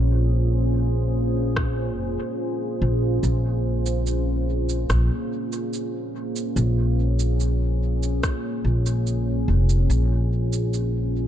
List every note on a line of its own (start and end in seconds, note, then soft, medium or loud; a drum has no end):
0.00 1.98 A#1 medium
0.00 11.28 A#3 medium
0.00 11.28 C#4 medium
0.00 11.28 F4 medium
0.00 11.28 G#4 medium
0.00 11.28 C5 medium
1.56 kick loud
1.56 cross-stick medium
1.98 2.17 F1 loud
2.82 3.18 A#1 medium
3.23 4.86 A#1 medium
3.23 cabasa soft
3.86 cabasa soft
4.07 cabasa soft
4.69 cabasa soft
4.90 5.08 A#1 loud
4.90 kick medium
4.90 cross-stick medium
4.90 cabasa soft
5.52 cabasa soft
5.73 cabasa soft
6.36 cabasa soft
6.56 8.19 A#1 medium
6.56 cabasa soft
7.19 cabasa soft
7.40 cabasa soft
8.03 cabasa soft
8.23 kick medium
8.23 cross-stick medium
8.23 cabasa soft
8.65 9.44 A#1 medium
8.86 cabasa soft
9.07 cabasa soft
9.48 9.85 F1 medium
9.69 cabasa soft
9.90 11.28 A#1 loud
9.90 cabasa soft
10.53 cabasa soft
10.74 cabasa soft